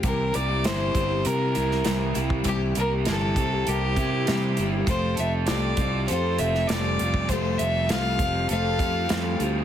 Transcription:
<<
  \new Staff \with { instrumentName = "Fiddle" } { \time 4/4 \key c \mixolydian \tempo 4 = 100 bes'8 d''8 c''4 bes'4. r8 | g'8 bes'8 a'4 g'4. r8 | c''8 e''8 d''4 c''8 e''8 d''4 | c''8 e''8 f''4 f''4. r8 | }
  \new Staff \with { instrumentName = "Overdriven electric guitar" } { \time 4/4 \key c \mixolydian c8 bes'8 e'8 c'8 bes'8 e'8 g8 e'8 | c8 bes'8 e'8 c'8 bes'8 e'8 g8 e'8 | f8 a'8 f'8 c'8 a'8 f'8 g8 f'8 | f8 a'8 f'8 c'8 a'8 f'8 g8 f'8 | }
  \new Staff \with { instrumentName = "Twelve-string acoustic guitar" } { \time 4/4 \key c \mixolydian <c e g bes e' g'>8 <g bes e' g'>8 <c e g bes e' g'>8 <g bes e' g'>8 <g bes e' g'>8 <bes e' g'>8 <c e g bes e' g'>8 <g bes e' g'>8 | <c e g bes e' g'>8 <g bes e' g'>8 <c e g bes e' g'>8 <g bes e' g'>8 <g bes e' g'>8 <g bes e' g'>8 <c e g bes e' g'>8 <g bes e' g'>8 | <f a c' f' g'>8 <c' f' g'>8 <f a c' f' g'>8 <c' f' g'>8 <a c' f' g'>8 <c' f' g'>8 <f a c' f' g'>8 <c' f' g'>8 | <f a c' f' g'>8 <c' f' g'>8 <f a c' f' g'>8 <c' f' g'>8 <a c' f' g'>8 <c' f' g'>8 <f a c' f' g'>8 <c' f' g'>8 | }
  \new Staff \with { instrumentName = "Fingered electric bass" } { \clef bass \time 4/4 \key c \mixolydian c,8 c,8 r8 g,,8 c8 c,8 c,8 c,8 | c,8 c,8 g,,8 c,8 c,8 c8 c8 g,,8 | f,,8 f,,8 c,8 c,8 f,8 f,,8 f,,8 f,,8 | f,,8 f,,8 c,8 f,,8 f,,8 f,8 f,8 d,8 | }
  \new DrumStaff \with { instrumentName = "Drums" } \drummode { \time 4/4 <hh bd>8 hh8 <hh sn>8 <hh bd>8 hh8 hh16 sn16 <hh sn>8 hh16 bd16 | <hh bd>8 hh8 <hh sn>8 <hh bd>8 hh8 <hh bd>8 <hh sn>8 hh8 | <hh bd>8 hh8 <hh sn>8 <hh bd>8 hh8 hh16 sn16 <hh sn>8 hh16 bd16 | <hh bd>8 hh8 <hh sn>8 <hh bd>8 hh8 <hh bd>8 <hh sn>8 hh8 | }
>>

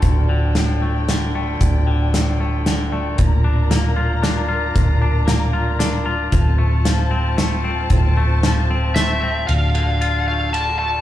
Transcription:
<<
  \new Staff \with { instrumentName = "Lead electric guitar" } { \time 3/4 \key d \minor \tempo 4 = 114 r2. | r2. | r2. | r2. |
r2. | r2 e''4 | f''4. f''8 a''8 a''8 | }
  \new Staff \with { instrumentName = "String section" } { \time 3/4 \key d \minor << { <f' a' g''>2.~ | <f' a' g''>2. | <f' bes' bes''>2.~ | <f' bes' bes''>2. |
<f' a' a''>2.~ | <f' a' a''>2. | <f' a' a''>2. | } \\ { d''2.~ | d''2.~ | d''2.~ | d''2. |
c''2.~ | c''2. | d''2. | } >> }
  \new Staff \with { instrumentName = "Clean electric guitar" } { \time 3/4 \key d \minor <d, a, d a>8 d8 a,8 a8 d8 a8 | d,8 d8 a,8 a8 d8 a8 | bes,8 d'8 bes8 f'8 d'8 f'8 | bes,8 d'8 bes8 f'8 d'8 f'8 |
f,8 a8 f8 c'8 a8 c'8 | f,8 a8 f8 c'8 a8 c'8 | d,8 d8 f'8 a8 d8 a8 | }
  \new Staff \with { instrumentName = "Fingered electric bass" } { \clef bass \time 3/4 \key d \minor d,,2. | d,,2. | d,,2. | d,,2. |
d,,2. | d,,2. | d,,2. | }
  \new DrumStaff \with { instrumentName = "Drums" } \drummode { \time 3/4 <hh bd>4 <hh sn>4 <hh sn>4 | <hh bd>4 <hh sn>4 <hh sn>4 | <hh bd>4 <hh sn>4 <hh sn>4 | <hh bd>4 <hh sn>4 <hh sn>4 |
<hh bd>4 <hh sn>4 <hh sn>4 | <hh bd>4 <hh sn>4 <hh sn>4 | cymr8 cymr8 cymr4 cymr4 | }
>>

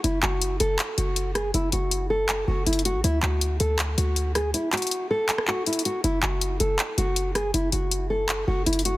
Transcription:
<<
  \new Staff \with { instrumentName = "Nylon-string guitar" } { \time 4/4 \key d \lydian \tempo 4 = 160 e'8 fis'4 a'8 r8 fis'4 gis'8 | e'8 fis'4 a'4 fis'8 e'8 fis'8 | e'8 fis'4 a'8 r8 fis'4 gis'8 | e'8 fis'4 a'4 fis'8 e'8 fis'8 |
e'8 fis'4 a'8 r8 fis'4 gis'8 | e'8 fis'4 a'4 fis'8 e'8 fis'8 | }
  \new Staff \with { instrumentName = "808-style bass" } { \clef bass \time 4/4 \key d \lydian fis,,8 fis,,4 fis,,8 r8 fis,,4. | fis,,8 fis,,2 fis,,8 fis,,8. a,,16 | d,8 d,4 d,4 d,4. | r1 |
fis,,8 fis,,4 fis,,8 r8 fis,,4. | fis,,8 fis,,2 fis,,8 fis,,8. r16 | }
  \new DrumStaff \with { instrumentName = "Drums" } \drummode { \time 4/4 hh8 hc8 hh8 hh8 <hc hh>8 hh8 hh8 <hh ss>8 | hh8 hh8 hh4 <hc hh>4 \tuplet 3/2 { hh16 hh16 hh16 hh16 r16 r16 } | hh8 hc8 hh8 hh8 <hc hh>8 hh8 hh8 <hh ss>8 | hh8 <hc hh>32 hh32 hh32 hh32 hh4 <hc hh>16 ss16 hc8 \tuplet 3/2 { hh16 hh16 hh16 hh16 r16 r16 } |
hh8 hc8 hh8 hh8 <hc hh>8 hh8 hh8 <hh ss>8 | hh8 hh8 hh4 <hc hh>4 \tuplet 3/2 { hh16 hh16 hh16 hh16 r16 r16 } | }
>>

